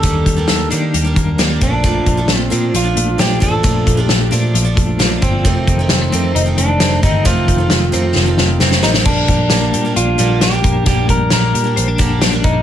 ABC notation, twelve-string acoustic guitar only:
X:1
M:4/4
L:1/16
Q:1/4=133
K:Gm
V:1 name="Twelve-string acoustic guitar"
[E,G,B,D]3 [G,B,D]3 [E,G,B,D]3 [G,B,D]3 [E,G,B,D]2 [B,,F,A,D]2 | [B,,F,A,D]3 [F,A,D]3 [B,,F,A,D]3 [F,A,D]3 [B,,F,A,D]2 [B,,F,A,D]2 | [B,,F,A,D]3 [F,A,D]3 [B,,F,A,D]3 [F,A,D]3 [B,,F,A,D]2 [B,,F,A,D]2 | [F,,C,E,A,C]3 [E,A,C]3 [C,E,A,C]3 [E,A,C]3 [C,E,A,C]2 [C,E,A,C]2 |
[F,,C,E,A,C]3 [E,A,C]3 [C,E,A,C]3 [E,A,C]3 [C,E,A,C]2 [C,E,A,C]2 | [D,G,B,D]4 [D,G,B,D]3 [G,B,D]3 [D,G,B,D]3 [G,B,D]3 | [D,G,B,D]4 [D,G,B,D]3 [G,B,D]3 [D,G,B,D]3 [G,B,D]3 |]